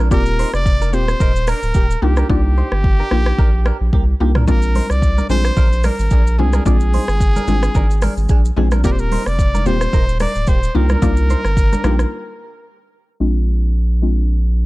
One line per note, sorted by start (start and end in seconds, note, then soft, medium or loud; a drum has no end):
0.00 0.13 A#1 medium
0.00 0.08 D4 medium
0.11 0.44 D#1 loud
0.11 0.62 A#3 loud
0.11 0.62 C4 medium
0.11 0.62 F4 medium
0.11 0.62 G4 loud
0.11 0.22 G4 medium
0.11 0.51 A#4 loud
0.11 0.22 D5 loud
0.11 kick loud
0.11 shaker medium
0.26 shaker medium
0.39 0.50 D#4 medium
0.39 0.49 C5 medium
0.39 open hi-hat medium
0.54 0.95 F1 medium
0.54 0.95 D5 loud
0.54 cross-stick medium
0.54 shaker medium
0.66 kick medium
0.66 shaker medium
0.82 0.90 D4 medium
0.82 0.90 A#4 medium
0.82 shaker medium
0.93 1.14 D#1 medium
0.93 1.14 A#3 medium
0.93 1.04 A#3 medium
0.93 1.14 C4 medium
0.93 1.14 F4 medium
0.93 1.14 G4 medium
0.93 1.04 G4 medium
0.93 1.50 C5 loud
0.93 shaker soft
1.08 cross-stick medium
1.08 shaker medium
1.20 1.53 D#1 loud
1.20 1.32 D#4 medium
1.20 1.31 A#4 medium
1.20 kick loud
1.20 shaker medium
1.36 shaker medium
1.47 1.59 D4 medium
1.47 2.04 A#4 loud
1.47 1.58 A#4 medium
1.47 cross-stick loud
1.47 open hi-hat medium
1.47 shaker medium
1.63 1.72 D1 medium
1.63 shaker soft
1.74 1.96 D#1 loud
1.74 1.86 A#3 medium
1.74 1.86 G4 medium
1.74 kick loud
1.74 shaker medium
1.91 shaker medium
2.02 2.24 C2 loud
2.02 2.23 A#3 medium
2.02 2.13 A#3 medium
2.02 2.23 D4 medium
2.02 2.23 D#4 medium
2.02 2.24 F4 medium
2.02 2.30 G4 medium
2.02 2.13 G4 medium
2.17 2.27 D4 medium
2.17 2.26 A#4 medium
2.17 cross-stick medium
2.17 shaker medium
2.29 2.63 C2 loud
2.29 2.80 A#3 loud
2.29 2.80 D4 medium
2.29 2.80 D#4 medium
2.29 2.80 F4 loud
2.29 2.41 F4 medium
2.29 4.17 G4 loud
2.29 2.40 D5 loud
2.29 kick loud
2.58 2.68 D#4 medium
2.58 2.67 C5 medium
2.72 3.03 G1 medium
2.72 cross-stick medium
2.84 kick medium
3.00 3.08 D4 medium
3.00 3.08 A#4 medium
3.11 3.33 A#1 medium
3.11 3.32 A#3 medium
3.11 3.22 A#3 medium
3.11 3.33 D4 medium
3.11 3.33 D#4 medium
3.11 3.33 F4 medium
3.11 3.22 G4 medium
3.11 cross-stick medium
3.26 cross-stick medium
3.39 3.72 A#1 loud
3.39 3.50 D4 medium
3.39 3.49 A#4 medium
3.39 kick loud
3.66 3.77 D4 medium
3.66 3.76 A#4 medium
3.66 cross-stick loud
3.81 3.90 A#1 medium
3.93 4.14 C2 medium
3.93 4.04 A#3 medium
3.93 4.04 G4 medium
3.93 kick loud
4.20 4.49 C2 medium
4.20 4.42 A#3 medium
4.20 4.32 A#3 medium
4.20 4.42 D4 medium
4.20 4.42 D#4 medium
4.20 4.42 F4 medium
4.20 4.31 G4 medium
4.35 4.45 D4 medium
4.35 4.44 A#4 medium
4.35 cross-stick medium
4.35 mid tom loud
4.47 4.81 A#1 loud
4.47 4.98 G#3 loud
4.47 4.98 C4 medium
4.47 4.98 D4 medium
4.47 4.99 F4 loud
4.47 4.59 F4 medium
4.47 4.92 A#4 loud
4.47 4.58 D5 loud
4.47 kick loud
4.47 low conga medium
4.47 shaker medium
4.62 shaker medium
4.75 4.86 D#4 medium
4.75 4.85 C5 medium
4.75 open hi-hat medium
4.75 high conga medium
4.90 5.21 C2 medium
4.90 5.30 D5 loud
4.90 cross-stick medium
4.90 shaker medium
5.02 kick medium
5.02 shaker medium
5.18 5.27 D4 medium
5.18 5.26 A#4 medium
5.18 high conga medium
5.18 shaker medium
5.29 5.51 A#1 medium
5.29 5.51 G#3 medium
5.29 5.51 C4 medium
5.29 5.41 C4 medium
5.29 5.51 D4 medium
5.29 5.51 F4 medium
5.29 5.40 G#4 medium
5.29 5.86 C5 loud
5.29 high conga medium
5.29 low conga medium
5.29 shaker medium
5.45 cross-stick loud
5.45 shaker medium
5.57 5.90 A#1 medium
5.57 5.68 D4 medium
5.57 5.68 A#4 medium
5.57 kick loud
5.57 low conga medium
5.57 shaker medium
5.73 shaker medium
5.84 5.95 D4 medium
5.84 6.41 A#4 loud
5.84 5.95 A#4 medium
5.84 cross-stick loud
5.84 open hi-hat medium
5.84 high conga medium
5.84 shaker medium
5.99 6.09 G#1 medium
5.99 shaker medium
6.11 6.40 A#1 medium
6.11 6.23 D4 medium
6.11 6.22 G#4 medium
6.11 kick loud
6.11 shaker medium
6.27 shaker medium
6.39 6.60 C2 loud
6.39 6.60 G#3 medium
6.39 6.60 C4 medium
6.39 6.50 C4 medium
6.39 6.60 D4 medium
6.39 6.60 F4 medium
6.39 6.66 G#4 medium
6.39 6.49 G#4 medium
6.39 low conga medium
6.53 6.63 D4 medium
6.53 6.62 A#4 medium
6.53 cross-stick medium
6.53 high conga medium
6.53 shaker medium
6.66 6.99 A#1 loud
6.66 7.16 G#3 loud
6.66 7.16 C4 medium
6.66 7.17 D4 medium
6.66 7.17 F4 loud
6.66 6.77 F4 medium
6.66 8.53 G#4 loud
6.66 6.77 D5 loud
6.66 kick loud
6.66 low conga medium
6.66 shaker medium
6.80 shaker medium
6.93 7.04 D#4 medium
6.93 7.04 C5 medium
6.93 open hi-hat medium
6.93 high conga medium
7.08 7.39 G1 medium
7.08 cross-stick medium
7.08 shaker medium
7.20 kick medium
7.20 shaker medium
7.36 7.45 D4 medium
7.36 7.44 A#4 medium
7.36 high conga medium
7.36 shaker medium
7.47 7.69 G#1 loud
7.47 7.69 G#3 medium
7.47 7.69 C4 medium
7.47 7.59 C4 medium
7.47 7.69 D4 medium
7.47 7.69 F4 medium
7.47 7.58 G#4 medium
7.47 high conga medium
7.47 low conga medium
7.47 shaker medium
7.63 cross-stick medium
7.63 shaker soft
7.75 8.08 G#1 loud
7.75 7.86 D4 medium
7.75 7.86 A#4 medium
7.75 kick loud
7.75 low conga medium
7.75 shaker medium
7.91 shaker medium
8.02 8.13 D4 medium
8.02 8.13 A#4 medium
8.02 cross-stick loud
8.02 open hi-hat medium
8.02 high conga medium
8.02 shaker medium
8.17 8.27 G#1 medium
8.17 shaker soft
8.29 8.51 A#1 loud
8.29 8.41 D4 medium
8.29 8.40 G#4 medium
8.29 kick loud
8.29 shaker medium
8.45 shaker medium
8.56 8.86 A#1 medium
8.56 8.78 G#3 medium
8.56 8.78 C4 medium
8.56 8.68 C4 medium
8.56 8.78 D4 medium
8.56 8.78 F4 medium
8.56 8.67 G#4 medium
8.56 low conga medium
8.71 8.81 D4 medium
8.71 8.81 A#4 medium
8.71 cross-stick medium
8.71 high conga medium
8.71 shaker medium
8.84 9.17 D#1 loud
8.84 9.35 A#3 loud
8.84 9.35 C4 medium
8.84 9.35 F4 medium
8.84 9.35 G4 loud
8.84 8.95 G4 medium
8.84 8.94 A#4 loud
8.84 8.95 D5 loud
8.84 kick loud
8.84 low conga medium
8.84 shaker medium
8.92 9.02 C5 medium
8.99 9.28 A#4 loud
8.99 shaker medium
9.11 9.22 D#4 medium
9.11 9.22 C5 medium
9.11 open hi-hat medium
9.11 high conga medium
9.26 9.68 F1 medium
9.26 9.68 D5 loud
9.26 cross-stick medium
9.26 shaker medium
9.39 kick medium
9.39 shaker medium
9.55 9.63 D4 medium
9.55 9.62 A#4 medium
9.55 high conga medium
9.55 shaker medium
9.66 9.87 D#1 medium
9.66 9.87 A#3 medium
9.66 9.77 A#3 medium
9.66 9.87 C4 medium
9.66 9.87 F4 medium
9.66 9.87 G4 medium
9.66 9.77 G4 medium
9.66 10.21 C5 loud
9.66 high conga medium
9.66 low conga medium
9.66 shaker soft
9.81 cross-stick loud
9.81 shaker medium
9.93 10.26 D#1 loud
9.93 10.04 D#4 medium
9.93 10.04 A#4 medium
9.93 kick loud
9.93 low conga medium
9.93 shaker medium
10.09 shaker medium
10.20 10.32 D4 medium
10.20 10.31 A#4 medium
10.20 10.50 D5 loud
10.20 cross-stick loud
10.20 open hi-hat medium
10.20 high conga medium
10.20 shaker medium
10.35 10.45 D1 medium
10.35 shaker soft
10.47 10.69 D#1 loud
10.47 10.59 A#3 medium
10.47 10.58 G4 medium
10.47 10.77 C5 loud
10.47 kick loud
10.47 shaker medium
10.63 shaker medium
10.75 10.96 C2 loud
10.75 10.96 A#3 medium
10.75 10.86 A#3 medium
10.75 10.96 D4 medium
10.75 10.96 D#4 medium
10.75 10.96 F4 medium
10.75 10.86 G4 medium
10.75 12.66 A#4 loud
10.75 low conga medium
10.89 10.99 D4 medium
10.89 10.99 A#4 medium
10.89 cross-stick medium
10.89 high conga medium
10.89 shaker soft
11.02 11.35 C2 loud
11.02 11.53 A#3 loud
11.02 11.53 D4 medium
11.02 11.53 D#4 medium
11.02 11.53 F4 loud
11.02 11.13 F4 medium
11.02 11.13 D5 loud
11.02 kick loud
11.02 low conga medium
11.02 shaker medium
11.17 shaker medium
11.29 11.41 D#4 medium
11.29 11.40 C5 medium
11.29 high conga medium
11.29 shaker medium
11.45 11.75 G1 medium
11.45 cross-stick medium
11.45 shaker medium
11.57 kick medium
11.57 shaker medium
11.73 11.81 D4 medium
11.73 11.81 A#4 medium
11.73 high conga medium
11.73 shaker medium
11.84 12.05 A#1 medium
11.84 12.05 A#3 medium
11.84 11.95 A#3 medium
11.84 12.05 D4 medium
11.84 12.05 D#4 medium
11.84 12.05 F4 medium
11.84 11.95 G4 medium
11.84 cross-stick loud
11.84 high conga medium
11.84 low conga medium
11.84 shaker soft
11.99 cross-stick medium
11.99 shaker medium
13.20 14.66 A#1 medium
13.20 13.71 G#3 medium
13.20 13.71 C4 medium
13.20 13.71 D4 medium
13.20 13.71 F4 loud
14.02 14.23 G#3 medium
14.02 14.23 C4 medium
14.02 14.24 D4 medium
14.02 14.24 F4 medium